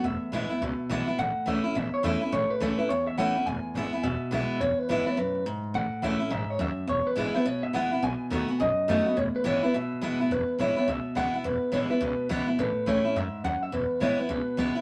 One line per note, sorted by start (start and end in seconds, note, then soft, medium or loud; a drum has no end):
0.04 0.21 E1 medium
0.04 0.59 E2 medium
0.04 1.04 E5 medium
0.22 muted upright bass stroke medium
0.32 0.50 A1 medium
0.32 0.50 E3 medium
0.32 0.50 G#3 medium
0.32 0.50 B3 medium
0.32 0.48 E4 loud
0.50 0.62 B3 soft
0.50 0.61 E4 medium
0.50 muted upright bass stroke medium
0.61 0.78 C#2 medium
0.61 1.17 B2 medium
0.80 muted upright bass stroke medium
0.90 1.07 B1 medium
0.90 1.07 E3 medium
0.90 1.07 G#3 medium
0.90 1.08 B3 medium
0.90 1.06 E4 medium
1.07 1.19 B3 soft
1.07 1.18 E4 medium
1.07 muted upright bass stroke medium
1.19 1.32 A1 medium
1.19 1.73 A2 medium
1.19 1.48 F#5 medium
1.37 muted upright bass stroke medium
1.46 1.60 C#2 medium
1.46 1.64 E3 medium
1.46 1.64 A3 medium
1.46 1.65 C#4 medium
1.46 1.62 E4 medium
1.46 1.74 E5 medium
1.64 1.76 C#4 medium
1.64 1.75 E4 medium
1.64 muted upright bass stroke medium
1.75 1.89 A1 medium
1.75 2.30 E2 medium
1.75 1.93 E5 medium
1.94 2.04 C#5 medium
1.94 muted upright bass stroke medium
2.03 2.17 E2 medium
2.03 2.21 E3 medium
2.03 2.21 A3 medium
2.03 2.21 C#4 medium
2.03 2.20 E4 loud
2.03 2.32 E5 loud
2.21 2.33 C#4 soft
2.21 2.32 E4 medium
2.21 muted upright bass stroke medium
2.32 2.46 A1 loud
2.32 2.87 A2 medium
2.32 2.51 C#5 loud
2.50 2.61 B4 medium
2.50 muted upright bass stroke medium
2.60 2.74 C#2 medium
2.60 2.78 E3 medium
2.60 2.78 A3 medium
2.60 2.79 C#4 medium
2.60 2.77 E4 medium
2.60 2.77 A4 medium
2.78 2.90 C#4 medium
2.78 2.89 E4 medium
2.78 2.89 B4 medium
2.78 muted upright bass stroke medium
2.89 3.03 E2 loud
2.89 3.45 E2 medium
2.89 3.06 C#5 medium
3.07 3.15 C#2 medium
3.07 3.18 E5 loud
3.17 3.31 A1 loud
3.17 3.35 E3 medium
3.17 3.35 A3 medium
3.17 3.36 C#4 loud
3.17 3.34 E4 medium
3.17 3.46 F#5 loud
3.35 3.43 C#2 medium
3.35 3.47 C#4 soft
3.35 3.46 E4 medium
3.46 3.59 E1 loud
3.46 4.01 E2 medium
3.46 4.03 G#5 loud
3.64 muted upright bass stroke medium
3.74 3.88 G#1 medium
3.74 3.92 E3 medium
3.74 3.93 G#3 medium
3.74 3.93 B3 medium
3.74 3.92 E4 medium
3.92 4.04 B3 soft
3.92 4.03 E4 medium
3.92 muted upright bass stroke medium
4.03 4.17 E1 loud
4.03 4.58 B2 medium
4.03 4.62 E5 medium
4.21 muted upright bass stroke medium
4.31 4.45 B1 loud
4.31 4.59 E3 medium
4.31 4.59 G#3 medium
4.31 4.60 B3 loud
4.31 4.60 E4 medium
4.50 muted upright bass stroke medium
4.60 4.73 E1 medium
4.60 5.16 E2 medium
4.60 4.79 C#5 loud
4.78 4.88 B4 medium
4.78 muted upright bass stroke medium
4.89 5.02 G#1 medium
4.89 5.06 E3 medium
4.89 5.06 G#3 medium
4.89 5.07 B3 medium
4.89 5.05 E4 loud
4.89 5.07 B4 medium
5.06 5.18 B3 soft
5.06 5.17 E4 medium
5.06 5.17 C#5 medium
5.06 muted upright bass stroke medium
5.17 5.30 B1 medium
5.17 5.45 F#2 medium
5.17 5.44 B4 medium
5.35 5.43 G#1 medium
5.46 5.59 E1 medium
5.46 5.73 G#2 medium
5.64 5.72 G#1 medium
5.74 5.88 A1 medium
5.74 6.29 A2 medium
5.74 6.03 F#5 loud
5.92 muted upright bass stroke medium
6.02 6.16 C#2 medium
6.02 6.20 E3 medium
6.02 6.20 A3 medium
6.02 6.20 C#4 medium
6.02 6.18 E4 loud
6.02 6.30 E5 medium
6.19 6.31 C#4 medium
6.19 6.30 E4 medium
6.19 muted upright bass stroke medium
6.30 6.44 A1 medium
6.30 6.58 G#2 medium
6.30 6.50 E5 medium
6.49 6.61 C#5 medium
6.49 muted upright bass stroke medium
6.59 6.73 D#2 loud
6.59 6.87 F#2 medium
6.59 6.87 E5 medium
6.78 muted upright bass stroke medium
6.87 7.02 E1 medium
6.87 7.43 E2 medium
6.87 7.07 C#5 loud
7.06 7.18 B4 medium
7.06 muted upright bass stroke medium
7.16 7.30 G#1 medium
7.16 7.33 E3 medium
7.16 7.34 G#3 medium
7.16 7.34 B3 medium
7.16 7.33 E4 loud
7.16 7.36 G#4 medium
7.34 7.46 B3 medium
7.34 7.45 E4 medium
7.34 7.46 B4 medium
7.34 muted upright bass stroke medium
7.46 7.59 B1 medium
7.46 8.00 B2 medium
7.46 7.64 C#5 medium
7.63 7.71 G#1 medium
7.63 7.74 E5 loud
7.73 7.87 E1 loud
7.73 7.91 E3 medium
7.73 7.91 G#3 medium
7.73 7.92 B3 medium
7.73 7.90 E4 medium
7.73 8.03 F#5 loud
7.92 8.00 A#1 medium
7.92 8.03 B3 soft
7.92 8.02 E4 medium
8.03 8.16 B1 loud
8.03 8.57 B2 medium
8.03 8.60 G#5 loud
8.21 muted upright bass stroke medium
8.30 8.44 D#2 medium
8.30 8.48 D#3 loud
8.30 8.48 A3 medium
8.30 8.49 B3 medium
8.30 8.47 F#4 loud
8.48 8.60 B3 medium
8.48 8.59 F#4 medium
8.48 muted upright bass stroke medium
8.60 8.73 B1 loud
8.60 9.14 F#2 medium
8.60 9.19 D#5 loud
8.78 muted upright bass stroke medium
8.88 9.01 F#2 medium
8.88 9.05 D#3 medium
8.88 9.06 A3 medium
8.88 9.06 B3 medium
8.88 9.05 F#4 loud
9.06 9.17 B3 medium
9.06 9.16 F#4 medium
9.06 muted upright bass stroke medium
9.17 9.30 E1 medium
9.17 9.71 E2 medium
9.17 9.22 C#5 loud
9.35 9.46 B4 medium
9.35 muted upright bass stroke medium
9.44 9.59 G#1 medium
9.44 9.62 E3 medium
9.44 9.62 G#3 medium
9.44 9.62 B3 medium
9.44 9.62 E4 loud
9.44 9.63 C#5 medium
9.63 9.74 B3 medium
9.63 9.73 E4 medium
9.63 9.75 B4 medium
9.63 muted upright bass stroke medium
9.74 9.87 B1 medium
9.74 10.29 B2 medium
9.74 10.01 E5 medium
9.92 10.00 G#1 medium
10.01 10.15 E1 loud
10.01 10.19 E3 medium
10.01 10.19 G#3 medium
10.01 10.20 B3 medium
10.01 10.19 E4 loud
10.20 10.28 G#1 medium
10.20 10.31 B3 soft
10.20 10.30 E4 medium
10.30 10.47 E1 medium
10.30 10.86 E2 medium
10.30 10.60 B4 medium
10.48 muted upright bass stroke medium
10.59 10.76 A1 medium
10.59 10.76 E3 medium
10.59 10.76 G#3 medium
10.59 10.77 B3 medium
10.59 10.75 E4 medium
10.59 10.77 C#5 medium
10.76 10.88 B3 soft
10.76 10.87 E4 medium
10.76 10.89 C#5 medium
10.76 muted upright bass stroke medium
10.88 11.04 C#2 medium
10.88 11.42 B2 medium
10.88 11.15 E5 medium
11.05 muted upright bass stroke medium
11.15 11.33 C#2 medium
11.15 11.33 E3 medium
11.15 11.33 G#3 medium
11.15 11.33 B3 loud
11.15 11.33 E4 medium
11.15 11.35 F#5 loud
11.34 11.45 B3 medium
11.34 11.44 E4 medium
11.34 11.45 E5 medium
11.34 muted upright bass stroke medium
11.44 11.61 E1 loud
11.44 11.99 E2 medium
11.44 11.73 B4 medium
11.63 muted upright bass stroke medium
11.72 11.90 A1 medium
11.72 11.89 E3 medium
11.72 11.90 G#3 medium
11.72 11.90 B3 medium
11.72 11.89 E4 medium
11.72 11.78 C#5 medium
11.90 12.02 B3 medium
11.90 12.01 E4 medium
11.90 12.27 B4 medium
11.90 muted upright bass stroke medium
12.01 12.18 C#2 medium
12.01 12.56 B2 medium
12.20 muted upright bass stroke medium
12.29 12.47 C#2 medium
12.29 12.47 E3 medium
12.29 12.47 G#3 medium
12.29 12.47 B3 loud
12.29 12.46 E4 medium
12.47 12.59 B3 soft
12.47 12.58 E4 medium
12.47 muted upright bass stroke medium
12.59 12.75 A1 loud
12.59 13.14 A2 medium
12.59 12.86 B4 medium
12.76 muted upright bass stroke medium
12.86 13.04 C#2 medium
12.86 13.04 E3 medium
12.86 13.04 A3 medium
12.86 13.04 C#4 medium
12.86 13.03 E4 loud
12.86 13.17 C#5 medium
13.05 13.16 C#4 soft
13.05 13.15 E4 medium
13.05 muted upright bass stroke medium
13.16 13.33 F#2 medium
13.16 13.43 G#2 medium
13.16 13.44 E5 medium
13.34 muted upright bass stroke medium
13.44 13.61 D#2 medium
13.44 13.72 F#2 medium
13.44 13.62 F#5 loud
13.62 13.73 E5 medium
13.62 muted upright bass stroke medium
13.72 13.90 E1 loud
13.72 14.28 E2 medium
13.72 14.00 B4 loud
13.91 muted upright bass stroke medium
14.00 14.18 A1 medium
14.00 14.18 E3 medium
14.00 14.18 G#3 medium
14.00 14.19 B3 medium
14.00 14.17 E4 loud
14.00 14.19 C#5 medium
14.18 14.30 B3 soft
14.18 14.29 E4 medium
14.18 14.58 B4 medium
14.18 muted upright bass stroke medium
14.29 14.47 C#2 medium
14.29 14.81 B2 medium
14.47 muted upright bass stroke medium
14.57 14.75 C#2 medium
14.57 14.75 E3 medium
14.57 14.75 G#3 medium
14.57 14.76 B3 loud
14.57 14.74 E4 loud
14.75 14.81 B3 soft
14.75 14.81 E4 medium
14.75 muted upright bass stroke medium